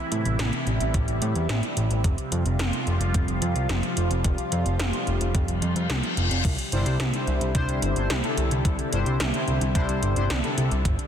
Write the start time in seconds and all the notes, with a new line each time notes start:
Already playing: C3 E3 G3 E4
0.12 A2, closed hi-hat
0.25 A1, closed hi-hat
0.39 A1, snare, closed hi-hat
0.53 closed hi-hat
0.67 A1, closed hi-hat
0.80 A1, closed hi-hat
0.94 A1, kick, closed hi-hat
1.08 A1, closed hi-hat
1.22 A2, closed hi-hat
1.35 E2, closed hi-hat
1.49 A1, snare, closed hi-hat
1.63 closed hi-hat
1.77 A1, closed hi-hat
1.91 A1, closed hi-hat
2.04 F1 F3 G3 F4, kick, closed hi-hat
2.18 closed hi-hat
2.32 F2, closed hi-hat
2.46 F1, closed hi-hat
2.59 F1, snare, closed hi-hat
2.73 closed hi-hat
2.87 F1, closed hi-hat
3.01 F1, closed hi-hat
3.14 F1, kick, closed hi-hat
3.28 F1, closed hi-hat
3.42 F2, closed hi-hat
3.56 C2, closed hi-hat
3.69 F1, snare, closed hi-hat
3.83 closed hi-hat
3.97 F1, closed hi-hat
4.11 F1, closed hi-hat
4.24 F1, kick, closed hi-hat
4.38 closed hi-hat
4.52 F2, closed hi-hat
4.66 F1, closed hi-hat
4.80 F1, snare, closed hi-hat
4.93 closed hi-hat
5.07 F1, closed hi-hat
5.21 F1, closed hi-hat
5.35 F1, kick, closed hi-hat, reverse cymbal
5.48 F1, closed hi-hat
5.62 F2, closed hi-hat
5.76 F2, closed hi-hat
5.90 C2, snare, closed hi-hat
6.03 closed hi-hat
6.17 F1, closed hi-hat
6.31 F1, closed hi-hat
6.45 C2 D3 G3 C4 E4, kick, closed hi-hat, crash
6.59 closed hi-hat
6.72 G1 C3 G3 D4 E4 C5, closed hi-hat
6.86 C2, closed hi-hat
7.00 C2, snare, closed hi-hat
7.14 C3 G3 D4 E4 C5, closed hi-hat
7.27 C2, closed hi-hat
7.41 C2, closed hi-hat
7.55 C2 C3 G3 D4 E4 C5, kick, closed hi-hat
7.69 C2, closed hi-hat
7.82 G1, closed hi-hat
7.96 G1 C3 G3 D4 E4 C5, closed hi-hat
8.10 C2, snare, closed hi-hat
8.24 C3 G3 D4 E4 A4, closed hi-hat
8.37 C2, closed hi-hat
8.51 C2, closed hi-hat
8.65 C2, kick, closed hi-hat
8.79 closed hi-hat
8.93 G1 C3 G3 D4 E4 C5, closed hi-hat
9.06 C2, closed hi-hat
9.20 C2, snare, closed hi-hat
9.34 C3 G3 D4 E4 C5, closed hi-hat
9.48 C2, closed hi-hat
9.61 C2, closed hi-hat
9.75 C2 C3 G3 D4 E4 C5, kick, closed hi-hat
9.89 C2, closed hi-hat
10.03 G1, closed hi-hat
10.16 G1 C3 G3 D4 E4 C5, closed hi-hat
10.30 C2, snare, closed hi-hat
10.44 C3 G3 D4 E4 A4, closed hi-hat
10.58 C2, closed hi-hat
10.71 C2, closed hi-hat
10.85 G1 A3 B3 G4, kick, closed hi-hat
10.99 closed hi-hat